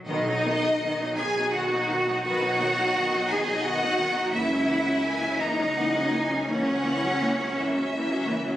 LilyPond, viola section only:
\new Staff \with { instrumentName = "Viola section" } { \clef bass \time 12/8 \key b \major \tempo 4. = 56 <dis b>16 <fis dis'>16 <dis b>16 <fis dis'>16 <dis b>16 <fis dis'>16 <dis b>16 <fis dis'>16 <dis b>16 <fis dis'>16 <dis b>16 <fis dis'>16 <dis b>16 <fis dis'>16 <dis b>16 <fis dis'>16 <dis b>16 <fis dis'>16 <dis b>16 <fis dis'>16 <dis b>16 <fis dis'>16 <dis b>16 <fis dis'>16 | <e ais>16 <fis cis'>16 <e ais>16 <fis cis'>16 <e ais>16 <fis cis'>16 <e ais>16 <fis cis'>16 <e ais>16 <fis cis'>16 <e ais>16 <fis cis'>16 <e ais>16 <fis cis'>16 <e ais>16 <fis cis'>16 <e ais>16 <fis cis'>16 <e ais>16 <fis cis'>16 <e ais>16 <fis cis'>16 <e ais>16 <fis cis'>16 | }